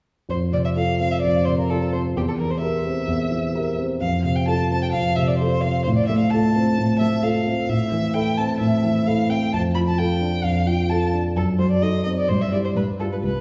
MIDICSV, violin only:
0, 0, Header, 1, 2, 480
1, 0, Start_track
1, 0, Tempo, 466200
1, 301, Time_signature, 4, 2, 24, 8
1, 3658, Tempo, 458716
1, 10858, Tempo, 466200
1, 13919, End_track
2, 0, Start_track
2, 0, Title_t, "Violin"
2, 0, Program_c, 0, 40
2, 308, Note_on_c, 0, 72, 52
2, 390, Note_off_c, 0, 72, 0
2, 548, Note_on_c, 0, 74, 49
2, 595, Note_off_c, 0, 74, 0
2, 666, Note_on_c, 0, 76, 46
2, 713, Note_off_c, 0, 76, 0
2, 788, Note_on_c, 0, 77, 54
2, 1022, Note_off_c, 0, 77, 0
2, 1028, Note_on_c, 0, 77, 52
2, 1145, Note_on_c, 0, 76, 51
2, 1160, Note_off_c, 0, 77, 0
2, 1248, Note_off_c, 0, 76, 0
2, 1254, Note_on_c, 0, 74, 52
2, 1494, Note_on_c, 0, 72, 48
2, 1509, Note_off_c, 0, 74, 0
2, 1619, Note_off_c, 0, 72, 0
2, 1626, Note_on_c, 0, 70, 44
2, 1747, Note_on_c, 0, 69, 49
2, 1763, Note_off_c, 0, 70, 0
2, 1981, Note_off_c, 0, 69, 0
2, 1987, Note_on_c, 0, 72, 46
2, 2069, Note_off_c, 0, 72, 0
2, 2235, Note_on_c, 0, 67, 50
2, 2281, Note_off_c, 0, 67, 0
2, 2350, Note_on_c, 0, 69, 41
2, 2397, Note_off_c, 0, 69, 0
2, 2459, Note_on_c, 0, 70, 43
2, 2580, Note_on_c, 0, 72, 45
2, 2596, Note_off_c, 0, 70, 0
2, 2687, Note_off_c, 0, 72, 0
2, 2693, Note_on_c, 0, 76, 56
2, 3870, Note_off_c, 0, 76, 0
2, 4129, Note_on_c, 0, 77, 59
2, 4360, Note_off_c, 0, 77, 0
2, 4382, Note_on_c, 0, 77, 53
2, 4499, Note_on_c, 0, 79, 56
2, 4514, Note_off_c, 0, 77, 0
2, 4622, Note_off_c, 0, 79, 0
2, 4627, Note_on_c, 0, 81, 56
2, 4861, Note_off_c, 0, 81, 0
2, 4879, Note_on_c, 0, 81, 59
2, 4983, Note_off_c, 0, 81, 0
2, 4990, Note_on_c, 0, 79, 52
2, 5036, Note_off_c, 0, 79, 0
2, 5087, Note_on_c, 0, 77, 63
2, 5335, Note_on_c, 0, 76, 56
2, 5350, Note_off_c, 0, 77, 0
2, 5459, Note_on_c, 0, 74, 50
2, 5475, Note_off_c, 0, 76, 0
2, 5557, Note_off_c, 0, 74, 0
2, 5564, Note_on_c, 0, 72, 53
2, 5810, Note_on_c, 0, 77, 52
2, 5825, Note_off_c, 0, 72, 0
2, 6044, Note_off_c, 0, 77, 0
2, 6050, Note_on_c, 0, 72, 58
2, 6102, Note_off_c, 0, 72, 0
2, 6181, Note_on_c, 0, 74, 52
2, 6290, Note_off_c, 0, 74, 0
2, 6296, Note_on_c, 0, 76, 52
2, 6401, Note_off_c, 0, 76, 0
2, 6407, Note_on_c, 0, 77, 56
2, 6537, Note_on_c, 0, 81, 68
2, 6553, Note_off_c, 0, 77, 0
2, 7249, Note_off_c, 0, 81, 0
2, 7255, Note_on_c, 0, 76, 58
2, 7504, Note_on_c, 0, 77, 55
2, 7520, Note_off_c, 0, 76, 0
2, 7985, Note_on_c, 0, 76, 62
2, 8001, Note_off_c, 0, 77, 0
2, 8458, Note_on_c, 0, 79, 71
2, 8474, Note_off_c, 0, 76, 0
2, 8704, Note_on_c, 0, 81, 58
2, 8719, Note_off_c, 0, 79, 0
2, 8934, Note_off_c, 0, 81, 0
2, 8940, Note_on_c, 0, 76, 58
2, 9429, Note_on_c, 0, 77, 60
2, 9445, Note_off_c, 0, 76, 0
2, 9672, Note_on_c, 0, 79, 59
2, 9687, Note_off_c, 0, 77, 0
2, 9907, Note_off_c, 0, 79, 0
2, 9914, Note_on_c, 0, 81, 61
2, 9998, Note_off_c, 0, 81, 0
2, 10136, Note_on_c, 0, 83, 56
2, 10185, Note_off_c, 0, 83, 0
2, 10279, Note_on_c, 0, 81, 57
2, 10388, Note_on_c, 0, 79, 63
2, 10404, Note_off_c, 0, 81, 0
2, 10862, Note_on_c, 0, 77, 60
2, 10877, Note_off_c, 0, 79, 0
2, 11100, Note_on_c, 0, 79, 56
2, 11116, Note_off_c, 0, 77, 0
2, 11333, Note_on_c, 0, 81, 54
2, 11349, Note_off_c, 0, 79, 0
2, 11573, Note_off_c, 0, 81, 0
2, 11815, Note_on_c, 0, 69, 52
2, 11898, Note_off_c, 0, 69, 0
2, 12044, Note_on_c, 0, 72, 48
2, 12161, Note_off_c, 0, 72, 0
2, 12167, Note_on_c, 0, 74, 52
2, 12288, Note_on_c, 0, 75, 59
2, 12304, Note_off_c, 0, 74, 0
2, 12507, Note_off_c, 0, 75, 0
2, 12514, Note_on_c, 0, 75, 54
2, 12564, Note_off_c, 0, 75, 0
2, 12655, Note_on_c, 0, 74, 50
2, 12765, Note_on_c, 0, 72, 50
2, 12780, Note_off_c, 0, 74, 0
2, 12896, Note_on_c, 0, 76, 47
2, 12911, Note_off_c, 0, 72, 0
2, 13008, Note_off_c, 0, 76, 0
2, 13014, Note_on_c, 0, 74, 50
2, 13060, Note_off_c, 0, 74, 0
2, 13137, Note_on_c, 0, 72, 40
2, 13183, Note_off_c, 0, 72, 0
2, 13254, Note_on_c, 0, 71, 45
2, 13336, Note_off_c, 0, 71, 0
2, 13502, Note_on_c, 0, 69, 39
2, 13548, Note_off_c, 0, 69, 0
2, 13626, Note_on_c, 0, 71, 40
2, 13672, Note_off_c, 0, 71, 0
2, 13739, Note_on_c, 0, 71, 45
2, 13919, Note_off_c, 0, 71, 0
2, 13919, End_track
0, 0, End_of_file